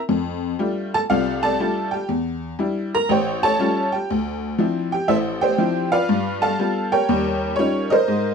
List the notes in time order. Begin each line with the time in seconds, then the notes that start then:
0.09 F2
0.59 G3 A3 D4 F4
0.94 A4 A5
1.10 C2 C3 F4 A4 D5 F5
1.43 A4 D5 A5
1.60 G3 A3 D4 F4
1.91 G4 G5
2.09 E2
2.59 G3 D4 E4
2.95 A#4 A#5
3.09 A1 G4 C5 C#5 G5
3.43 A4 C#5 A5
3.59 G3 A3 C#4 F4
3.92 G4 G5
4.10 D2
4.58 F3 C4 D4 E4
4.92 G4 G5
5.08 A1 E4 A4 C5 E5
5.41 G4 C5 G5
5.58 F3 C4 D4 E4
5.92 F4 B4 D5 F5
6.09 G2
6.42 A4 F5 A5
6.59 G3 B3 F4
6.92 G4 A#4 C#5 G5
7.09 D#2 G3
7.56 G3 C#4 D#4 F4 C#5
7.90 A#4 C5 D#5
8.08 G#2